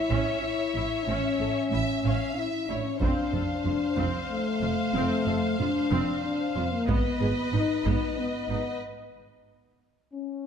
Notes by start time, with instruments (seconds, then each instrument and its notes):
Already playing: french horn section E4, violin section C#5 E5
0.11 double bass section A1, cello section A2, viola section C#4, taiko
0.42 french horn section E4
0.75 double bass section A1, cello section A2, viola section E4
1.04 double bass section A1, cello section A2, french horn section C#4
1.10 viola section C#4
1.40 double bass section A1, cello section A2, viola section A4
1.71 double bass section A1, cello section A2, viola section E4, violin section E5
2.03 double bass section A1, cello section A2, viola section C#4, violin section F5
2.35 french horn section E4, violin section E5
2.68 double bass section A1, cello section A2, french horn section D4, viola section E4, violin section C#5
2.84 french horn section C#4
2.99 double bass section F1, cello section F2, viola section C4, french horn section D4, violin section C5 F5, taiko
3.33 double bass section F1, cello section F2, viola section A4
3.65 double bass section F1, cello section F2, viola section F4
3.96 double bass section F1, cello section F2, viola section C4, taiko
4.30 french horn section A3
4.62 double bass section F1, cello section F2, viola section F4
4.94 double bass section F1, cello section F2, french horn section A3, viola section C4
5.26 double bass section F1, cello section F2, viola section A4
5.59 double bass section F1, cello section F2, french horn section D4, viola section F4
5.91 double bass section F1, cello section F2, viola section C4
6.25 french horn section D4
6.56 double bass section F1, cello section F2, french horn section C4, viola section F4
6.72 french horn section A#3
6.87 double bass section G#1, cello section G#2, viola section B3, french horn section B3, violin section B4 D#5, taiko
7.20 double bass section G#1, cello section G#2, viola section G#4
7.53 double bass section G#1, cello section G#2, viola section D#4, french horn section D#4
7.85 double bass section G#1, cello section G#2, viola section B3, taiko
8.18 french horn section B3
8.50 double bass section G#1, cello section G#2, viola section D#4
10.13 french horn section C#4